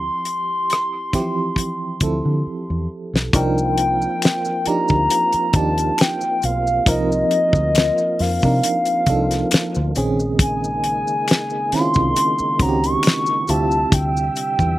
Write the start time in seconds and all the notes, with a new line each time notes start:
Already playing: F3 C4 E4 G4 C6
0.25 closed hi-hat
0.70 cross-stick, closed hi-hat
1.13 E3 C4 E4 G4, kick, cross-stick, closed hi-hat
1.20 F3
1.56 kick, closed hi-hat
2.00 D2 F3 C4 E4 A4, kick, closed hi-hat
2.25 D3
2.46 muted fingered electric bass stroke
2.70 E2
3.13 B1, snare
3.33 C2 F3 A#3 C4 D4 D#4 F4 A#4 G5, kick, closed hi-hat, maracas
3.58 maracas
3.78 closed hi-hat
4.02 maracas
4.22 finger snap, snare, closed hi-hat, maracas
4.45 maracas
4.66 F3 D4 D#4 G4 A#5, muted fingered electric bass stroke, closed hi-hat
4.88 D2, kick, maracas
5.10 closed hi-hat, maracas
5.33 muted fingered electric bass stroke, closed hi-hat, maracas
5.53 D#2 F3 D4 D#4 G4 A5, kick, closed hi-hat
5.78 closed hi-hat, maracas
5.98 G5, finger snap, snare, closed hi-hat, maracas
6.21 maracas
6.42 B1 F5, closed hi-hat, maracas
6.67 maracas
6.86 C2 F3 C4 D#4 A#4 D#5, kick, closed hi-hat, maracas
7.12 maracas
7.31 closed hi-hat
7.53 D2, kick, maracas
7.75 finger snap, snare, closed hi-hat, maracas
7.98 maracas
8.19 F2 F5, snare, open hi-hat
8.42 C3 F3 D4 D#4 A#4, kick, maracas
8.64 closed hi-hat, maracas
8.85 closed hi-hat, maracas
9.06 C2 F3 D4 D#4 A4, kick, closed hi-hat
9.31 snare, closed hi-hat, maracas
9.51 finger snap, muted fingered electric bass stroke, snare, closed hi-hat, maracas
9.75 D2, maracas
9.95 A#1 C#3 D#3 G#3 A#3 C4 C#4 D#4 G#4, closed hi-hat, maracas
10.20 maracas
10.39 G#5, kick, closed hi-hat, maracas
10.64 maracas
10.84 closed hi-hat
11.07 maracas
11.28 finger snap, snare, closed hi-hat, maracas
11.50 maracas
11.72 D#3 C4 C#4 E4 C6, muted fingered electric bass stroke, snare, closed hi-hat
11.80 F4
11.94 C2, kick, maracas
12.16 closed hi-hat, maracas
12.39 muted fingered electric bass stroke, maracas
12.59 C#2 D#3 C4 C#4 F#4 A#5, kick, closed hi-hat
12.68 G4
12.84 C#6, closed hi-hat, maracas
13.03 finger snap, closed hi-hat, maracas
13.07 snare
13.26 maracas
13.48 D2 C3 D3 G3 C4 E4 F4 G4 E5 A5, closed hi-hat, maracas
13.71 maracas
13.92 D2 G5, kick, closed hi-hat, maracas
14.17 maracas
14.36 closed hi-hat, maracas
14.59 E2, kick, maracas